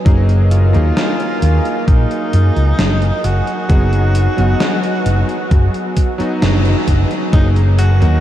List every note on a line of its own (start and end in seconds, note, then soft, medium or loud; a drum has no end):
0.00 7.29 F#3 medium
0.00 7.29 D#5 medium
0.05 0.76 F#1 medium
0.05 0.69 F#3 medium
0.05 0.69 A#3 medium
0.05 0.69 D#4 medium
0.05 0.69 G#4 medium
0.05 3.66 A#4 medium
0.05 7.29 G#5 medium
0.05 kick loud
0.05 closed hi-hat medium
0.29 closed hi-hat soft
0.51 1.84 F4 loud
0.51 closed hi-hat medium
0.73 0.90 D#2 medium
0.73 3.64 F#3 medium
0.73 3.64 A#3 medium
0.73 3.65 D#4 medium
0.73 3.65 G#4 medium
0.73 closed hi-hat soft
0.97 snare loud
0.97 closed hi-hat medium
1.20 closed hi-hat soft
1.42 1.58 D#2 medium
1.42 closed hi-hat medium
1.65 closed hi-hat soft
1.88 2.04 A#1 medium
1.88 3.26 D#4 loud
1.88 kick loud
1.88 closed hi-hat medium
2.11 closed hi-hat soft
2.33 2.49 F#2 medium
2.33 closed hi-hat medium
2.56 2.72 C#2 loud
2.56 closed hi-hat soft
2.79 3.10 F#1 loud
2.79 snare loud
2.79 closed hi-hat medium
3.02 closed hi-hat soft
3.24 3.40 F#1 medium
3.24 6.42 F#4 loud
3.24 closed hi-hat medium
3.47 closed hi-hat soft
3.69 4.26 F#1 loud
3.69 4.32 F#3 medium
3.69 4.32 B3 medium
3.69 4.33 D#4 medium
3.69 4.33 G#4 medium
3.69 7.30 B4 medium
3.69 kick loud
3.69 closed hi-hat medium
3.93 closed hi-hat soft
4.15 closed hi-hat medium
4.37 4.53 F#1 medium
4.37 6.15 F#3 medium
4.37 6.15 B3 medium
4.37 6.16 D#4 medium
4.37 6.16 F#4 medium
4.37 closed hi-hat soft
4.60 snare loud
4.60 closed hi-hat medium
4.84 closed hi-hat soft
5.06 5.22 F#1 medium
5.06 closed hi-hat medium
5.29 closed hi-hat soft
5.51 5.67 F#1 medium
5.51 kick loud
5.51 closed hi-hat medium
5.74 closed hi-hat soft
5.97 kick medium
5.97 closed hi-hat medium
6.18 7.27 F#3 medium
6.18 7.27 B3 medium
6.18 7.28 D#4 medium
6.18 7.28 F#4 medium
6.18 muted fingered electric bass stroke soft
6.18 closed hi-hat soft
6.42 6.73 F#1 medium
6.42 snare loud
6.42 closed hi-hat medium
6.65 closed hi-hat soft
6.88 7.03 F#1 medium
6.88 kick medium
6.88 closed hi-hat medium
7.11 closed hi-hat soft
7.32 8.03 F#1 loud
7.32 7.96 F#3 medium
7.32 7.96 A#3 medium
7.32 7.96 D#4 medium
7.32 7.49 D#4 loud
7.32 8.20 F#4 medium
7.32 7.96 G#4 medium
7.32 8.20 A#4 medium
7.32 8.20 D#5 medium
7.32 8.20 G#5 medium
7.32 kick loud
7.32 closed hi-hat medium
7.56 closed hi-hat soft
7.79 8.20 F#4 loud
7.79 closed hi-hat medium
8.00 8.17 D#2 medium
8.00 8.20 F#3 medium
8.00 8.20 A#3 medium
8.00 8.20 D#4 medium
8.00 8.20 F#4 medium
8.00 closed hi-hat soft